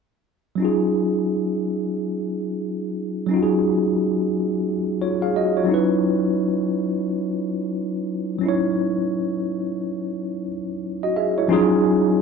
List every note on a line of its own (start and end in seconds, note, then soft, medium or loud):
0.55 3.25 F#3 medium
0.55 3.26 C#4 medium
0.60 3.28 D#4 soft
0.60 3.29 F4 medium
0.65 3.30 G#4 medium
3.26 4.62 F#3 medium
3.26 4.63 C#4 medium
3.31 4.64 D#4 medium
3.31 4.66 F4 medium
3.36 3.41 F#4 medium
3.43 4.70 G#4 medium
5.02 5.21 F4 soft
5.02 5.21 C#5 medium
5.22 5.35 G#4 soft
5.22 5.35 F5 medium
5.36 5.56 F#4 soft
5.36 5.55 D#5 medium
5.57 5.89 F4 soft
5.57 5.89 C#5 medium
5.64 8.35 F#3 medium
5.64 8.36 C#4 medium
5.68 8.37 D#4 medium
5.68 8.39 E4 medium
5.74 8.40 B4 medium
8.39 11.09 F#3 medium
8.39 11.10 C#4 medium
8.43 10.43 D#4 soft
8.43 10.44 E4 medium
8.48 10.46 C#5 medium
11.03 11.15 F#4 soft
11.03 11.15 D#5 medium
11.16 11.35 G#4 soft
11.16 11.35 E5 medium
11.38 11.69 E4 soft
11.38 11.69 C#5 medium
11.48 11.56 F3 medium
11.48 12.22 C#4 medium
11.48 12.22 D#4 medium
11.48 12.22 F4 medium
11.53 12.22 F#3 medium
11.53 12.22 G#4 medium